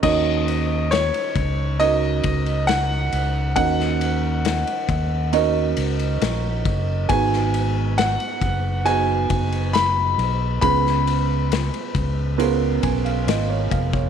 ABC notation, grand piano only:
X:1
M:4/4
L:1/8
Q:1/4=68
K:Ebm
V:1 name="Grand piano"
e2 d2 e2 g2 | g4 z4 | a2 g2 a2 c'2 | c'4 z4 |]